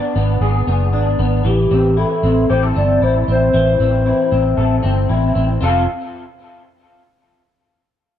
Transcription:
0, 0, Header, 1, 4, 480
1, 0, Start_track
1, 0, Key_signature, -1, "major"
1, 0, Tempo, 520382
1, 1342, Time_signature, 4, 2, 24, 8
1, 7551, End_track
2, 0, Start_track
2, 0, Title_t, "Soft synth lead"
2, 0, Program_c, 0, 80
2, 0, Note_on_c, 0, 74, 88
2, 110, Note_off_c, 0, 74, 0
2, 1351, Note_on_c, 0, 67, 86
2, 1824, Note_on_c, 0, 69, 95
2, 1838, Note_off_c, 0, 67, 0
2, 2302, Note_off_c, 0, 69, 0
2, 2310, Note_on_c, 0, 72, 94
2, 2416, Note_off_c, 0, 72, 0
2, 2555, Note_on_c, 0, 74, 102
2, 2771, Note_off_c, 0, 74, 0
2, 2802, Note_on_c, 0, 72, 97
2, 2905, Note_off_c, 0, 72, 0
2, 3055, Note_on_c, 0, 72, 105
2, 4681, Note_off_c, 0, 72, 0
2, 5191, Note_on_c, 0, 77, 82
2, 5410, Note_off_c, 0, 77, 0
2, 7551, End_track
3, 0, Start_track
3, 0, Title_t, "Clean electric guitar"
3, 0, Program_c, 1, 27
3, 0, Note_on_c, 1, 59, 55
3, 0, Note_on_c, 1, 62, 64
3, 0, Note_on_c, 1, 68, 63
3, 133, Note_off_c, 1, 59, 0
3, 145, Note_on_c, 1, 59, 59
3, 373, Note_off_c, 1, 68, 0
3, 384, Note_on_c, 1, 68, 60
3, 610, Note_off_c, 1, 59, 0
3, 622, Note_on_c, 1, 59, 60
3, 847, Note_off_c, 1, 62, 0
3, 858, Note_on_c, 1, 62, 60
3, 1086, Note_off_c, 1, 59, 0
3, 1097, Note_on_c, 1, 59, 52
3, 1336, Note_on_c, 1, 52, 82
3, 1387, Note_off_c, 1, 59, 0
3, 1388, Note_off_c, 1, 62, 0
3, 1390, Note_off_c, 1, 68, 0
3, 1577, Note_on_c, 1, 60, 60
3, 1816, Note_on_c, 1, 64, 65
3, 2056, Note_off_c, 1, 60, 0
3, 2059, Note_on_c, 1, 60, 63
3, 2303, Note_on_c, 1, 67, 65
3, 2421, Note_off_c, 1, 67, 0
3, 2421, Note_on_c, 1, 69, 53
3, 2540, Note_off_c, 1, 60, 0
3, 2544, Note_on_c, 1, 60, 57
3, 2776, Note_off_c, 1, 64, 0
3, 2787, Note_on_c, 1, 64, 53
3, 3020, Note_off_c, 1, 60, 0
3, 3024, Note_on_c, 1, 60, 54
3, 3253, Note_off_c, 1, 52, 0
3, 3264, Note_on_c, 1, 52, 73
3, 3503, Note_off_c, 1, 60, 0
3, 3507, Note_on_c, 1, 60, 55
3, 3733, Note_off_c, 1, 64, 0
3, 3744, Note_on_c, 1, 64, 57
3, 3979, Note_off_c, 1, 60, 0
3, 3983, Note_on_c, 1, 60, 56
3, 4207, Note_off_c, 1, 69, 0
3, 4218, Note_on_c, 1, 69, 57
3, 4450, Note_off_c, 1, 60, 0
3, 4454, Note_on_c, 1, 60, 61
3, 4686, Note_off_c, 1, 64, 0
3, 4698, Note_on_c, 1, 64, 56
3, 4932, Note_off_c, 1, 60, 0
3, 4936, Note_on_c, 1, 60, 52
3, 5168, Note_off_c, 1, 60, 0
3, 5172, Note_on_c, 1, 60, 74
3, 5183, Note_off_c, 1, 52, 0
3, 5183, Note_off_c, 1, 64, 0
3, 5186, Note_on_c, 1, 65, 71
3, 5193, Note_off_c, 1, 69, 0
3, 5197, Note_on_c, 1, 69, 82
3, 5369, Note_off_c, 1, 60, 0
3, 5376, Note_off_c, 1, 65, 0
3, 5381, Note_off_c, 1, 69, 0
3, 7551, End_track
4, 0, Start_track
4, 0, Title_t, "Fingered electric bass"
4, 0, Program_c, 2, 33
4, 145, Note_on_c, 2, 32, 90
4, 341, Note_off_c, 2, 32, 0
4, 376, Note_on_c, 2, 32, 95
4, 576, Note_off_c, 2, 32, 0
4, 621, Note_on_c, 2, 30, 87
4, 863, Note_off_c, 2, 30, 0
4, 863, Note_on_c, 2, 32, 97
4, 1059, Note_off_c, 2, 32, 0
4, 1101, Note_on_c, 2, 32, 90
4, 1298, Note_off_c, 2, 32, 0
4, 1334, Note_on_c, 2, 33, 101
4, 1534, Note_off_c, 2, 33, 0
4, 1580, Note_on_c, 2, 33, 91
4, 1876, Note_off_c, 2, 33, 0
4, 2061, Note_on_c, 2, 33, 95
4, 2258, Note_off_c, 2, 33, 0
4, 2308, Note_on_c, 2, 33, 75
4, 2502, Note_off_c, 2, 33, 0
4, 2548, Note_on_c, 2, 31, 81
4, 2742, Note_off_c, 2, 31, 0
4, 2783, Note_on_c, 2, 33, 90
4, 2979, Note_off_c, 2, 33, 0
4, 3027, Note_on_c, 2, 33, 92
4, 3221, Note_off_c, 2, 33, 0
4, 3267, Note_on_c, 2, 33, 101
4, 3461, Note_off_c, 2, 33, 0
4, 3504, Note_on_c, 2, 33, 84
4, 3798, Note_off_c, 2, 33, 0
4, 3985, Note_on_c, 2, 33, 87
4, 4180, Note_off_c, 2, 33, 0
4, 4222, Note_on_c, 2, 33, 87
4, 4419, Note_off_c, 2, 33, 0
4, 4465, Note_on_c, 2, 31, 84
4, 4660, Note_off_c, 2, 31, 0
4, 4702, Note_on_c, 2, 33, 92
4, 4899, Note_off_c, 2, 33, 0
4, 4942, Note_on_c, 2, 33, 91
4, 5139, Note_off_c, 2, 33, 0
4, 5180, Note_on_c, 2, 29, 89
4, 5404, Note_off_c, 2, 29, 0
4, 7551, End_track
0, 0, End_of_file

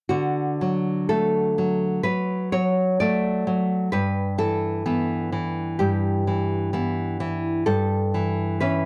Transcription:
0, 0, Header, 1, 2, 480
1, 0, Start_track
1, 0, Key_signature, 2, "major"
1, 0, Tempo, 1008403
1, 47, Time_signature, 4, 2, 24, 8
1, 525, Tempo, 953895
1, 1485, Tempo, 923077
1, 2445, Tempo, 941915
1, 4482, End_track
2, 0, Start_track
2, 0, Title_t, "Nylon-string guitar"
2, 0, Program_c, 0, 24
2, 43, Note_on_c, 0, 66, 55
2, 49, Note_on_c, 0, 50, 43
2, 292, Note_on_c, 0, 54, 33
2, 504, Note_off_c, 0, 66, 0
2, 517, Note_off_c, 0, 54, 0
2, 519, Note_on_c, 0, 69, 52
2, 523, Note_on_c, 0, 54, 33
2, 526, Note_on_c, 0, 57, 35
2, 760, Note_off_c, 0, 54, 0
2, 766, Note_on_c, 0, 54, 37
2, 980, Note_off_c, 0, 69, 0
2, 983, Note_off_c, 0, 50, 0
2, 992, Note_off_c, 0, 54, 0
2, 994, Note_on_c, 0, 71, 56
2, 998, Note_on_c, 0, 54, 35
2, 1226, Note_off_c, 0, 57, 0
2, 1232, Note_off_c, 0, 71, 0
2, 1236, Note_off_c, 0, 54, 0
2, 1240, Note_on_c, 0, 73, 56
2, 1242, Note_on_c, 0, 54, 38
2, 1472, Note_off_c, 0, 73, 0
2, 1479, Note_off_c, 0, 54, 0
2, 1480, Note_on_c, 0, 74, 61
2, 1485, Note_on_c, 0, 54, 37
2, 1486, Note_on_c, 0, 57, 41
2, 1717, Note_off_c, 0, 54, 0
2, 1724, Note_on_c, 0, 54, 35
2, 1942, Note_off_c, 0, 74, 0
2, 1943, Note_off_c, 0, 54, 0
2, 1944, Note_off_c, 0, 57, 0
2, 1958, Note_on_c, 0, 71, 55
2, 1963, Note_on_c, 0, 43, 49
2, 2190, Note_off_c, 0, 71, 0
2, 2198, Note_on_c, 0, 52, 34
2, 2200, Note_on_c, 0, 69, 53
2, 2439, Note_off_c, 0, 52, 0
2, 2445, Note_on_c, 0, 52, 36
2, 2446, Note_on_c, 0, 59, 36
2, 2677, Note_off_c, 0, 52, 0
2, 2683, Note_on_c, 0, 52, 37
2, 2903, Note_off_c, 0, 69, 0
2, 2905, Note_off_c, 0, 43, 0
2, 2920, Note_on_c, 0, 67, 53
2, 2926, Note_on_c, 0, 43, 41
2, 3144, Note_off_c, 0, 59, 0
2, 3161, Note_off_c, 0, 52, 0
2, 3167, Note_on_c, 0, 52, 37
2, 3394, Note_off_c, 0, 52, 0
2, 3400, Note_on_c, 0, 52, 37
2, 3404, Note_on_c, 0, 59, 40
2, 3618, Note_off_c, 0, 67, 0
2, 3634, Note_off_c, 0, 52, 0
2, 3640, Note_on_c, 0, 52, 39
2, 3860, Note_off_c, 0, 52, 0
2, 3861, Note_off_c, 0, 43, 0
2, 3862, Note_off_c, 0, 59, 0
2, 3873, Note_on_c, 0, 69, 56
2, 3877, Note_on_c, 0, 43, 52
2, 4120, Note_on_c, 0, 52, 43
2, 4341, Note_off_c, 0, 69, 0
2, 4352, Note_off_c, 0, 52, 0
2, 4355, Note_on_c, 0, 71, 58
2, 4359, Note_on_c, 0, 52, 41
2, 4361, Note_on_c, 0, 61, 41
2, 4482, Note_off_c, 0, 43, 0
2, 4482, Note_off_c, 0, 52, 0
2, 4482, Note_off_c, 0, 61, 0
2, 4482, Note_off_c, 0, 71, 0
2, 4482, End_track
0, 0, End_of_file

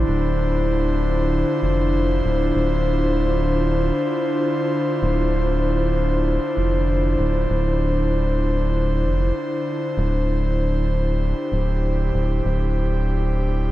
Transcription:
0, 0, Header, 1, 3, 480
1, 0, Start_track
1, 0, Key_signature, -1, "minor"
1, 0, Tempo, 618557
1, 59, Time_signature, 4, 2, 24, 8
1, 10644, End_track
2, 0, Start_track
2, 0, Title_t, "Analog synth pad"
2, 0, Program_c, 0, 89
2, 0, Note_on_c, 0, 50, 89
2, 0, Note_on_c, 0, 62, 81
2, 0, Note_on_c, 0, 64, 86
2, 0, Note_on_c, 0, 67, 78
2, 0, Note_on_c, 0, 72, 90
2, 152, Note_on_c, 0, 65, 77
2, 1104, Note_off_c, 0, 67, 0
2, 7739, Note_off_c, 0, 65, 0
2, 8373, Note_on_c, 0, 67, 87
2, 10644, Note_off_c, 0, 50, 0
2, 10644, Note_off_c, 0, 62, 0
2, 10644, Note_off_c, 0, 64, 0
2, 10644, Note_off_c, 0, 67, 0
2, 10644, Note_off_c, 0, 72, 0
2, 10644, End_track
3, 0, Start_track
3, 0, Title_t, "Analog synth bass"
3, 0, Program_c, 1, 38
3, 61, Note_on_c, 1, 26, 99
3, 1118, Note_off_c, 1, 26, 0
3, 1261, Note_on_c, 1, 29, 87
3, 1717, Note_off_c, 1, 29, 0
3, 1741, Note_on_c, 1, 26, 88
3, 1951, Note_off_c, 1, 26, 0
3, 1982, Note_on_c, 1, 26, 95
3, 3038, Note_off_c, 1, 26, 0
3, 3899, Note_on_c, 1, 26, 98
3, 4956, Note_off_c, 1, 26, 0
3, 5100, Note_on_c, 1, 29, 83
3, 5556, Note_off_c, 1, 29, 0
3, 5580, Note_on_c, 1, 26, 89
3, 5791, Note_off_c, 1, 26, 0
3, 5818, Note_on_c, 1, 26, 96
3, 7020, Note_on_c, 1, 29, 96
3, 7032, Note_off_c, 1, 26, 0
3, 7231, Note_off_c, 1, 29, 0
3, 7740, Note_on_c, 1, 26, 98
3, 8797, Note_off_c, 1, 26, 0
3, 8940, Note_on_c, 1, 26, 85
3, 9397, Note_off_c, 1, 26, 0
3, 9420, Note_on_c, 1, 26, 91
3, 9631, Note_off_c, 1, 26, 0
3, 9661, Note_on_c, 1, 26, 99
3, 10644, Note_off_c, 1, 26, 0
3, 10644, End_track
0, 0, End_of_file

